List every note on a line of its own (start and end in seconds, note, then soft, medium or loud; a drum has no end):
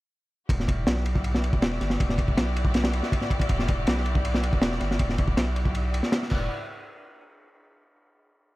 0.49 0.86 E1 loud
0.49 6.27 E4 medium
0.49 6.27 F#4 medium
0.49 6.27 G4 medium
0.49 6.27 D5 medium
0.49 kick loud
0.49 ride medium
0.60 snare soft
0.68 kick medium
0.68 ride medium
0.87 1.52 B1 medium
0.87 snare loud
0.87 ride medium
0.96 snare soft
1.06 ride medium
1.15 kick medium
1.24 ride medium
1.35 snare medium
1.44 ride medium
1.53 1.79 E1 medium
1.53 kick loud
1.62 snare loud
1.62 ride medium
1.72 snare soft
1.80 1.98 G1 loud
1.80 snare soft
1.80 ride medium
1.90 snare medium
2.00 2.36 E1 loud
2.00 kick loud
2.00 ride medium
2.09 snare soft
2.18 kick medium
2.18 ride medium
2.28 kick medium
2.37 3.02 B1 medium
2.37 snare loud
2.37 ride medium
2.56 ride medium
2.65 kick loud
2.74 snare medium
2.74 ride medium
2.84 snare loud
2.84 ride medium
2.93 ride medium
3.03 snare soft
3.12 kick loud
3.12 ride medium
3.21 snare soft
3.30 kick medium
3.30 ride medium
3.40 kick loud
3.40 ride medium
3.49 3.86 E1 loud
3.49 kick loud
3.49 ride medium
3.59 snare soft
3.68 kick loud
3.68 ride medium
3.87 4.52 B1 medium
3.87 snare loud
3.87 ride medium
3.97 snare soft
4.06 ride medium
4.15 kick loud
4.25 ride medium
4.34 snare medium
4.43 ride medium
4.53 4.79 E1 medium
4.53 kick loud
4.62 snare loud
4.62 ride medium
4.72 snare soft
4.80 4.98 G1 loud
4.80 snare soft
4.80 ride medium
4.91 snare soft
4.99 5.36 E1 loud
4.99 kick loud
4.99 ride medium
5.09 snare soft
5.18 kick loud
5.18 ride medium
5.28 kick medium
5.37 6.02 B1 medium
5.37 snare loud
5.37 ride medium
5.56 ride medium
5.65 kick medium
5.75 ride medium
5.94 ride medium
6.03 snare soft
6.12 snare loud
6.12 ride medium
6.23 snare soft
6.30 6.49 E1 loud
6.30 6.48 E4 medium
6.30 6.48 F#4 medium
6.30 6.48 G4 medium
6.30 6.48 D5 medium
6.30 kick loud
6.30 crash medium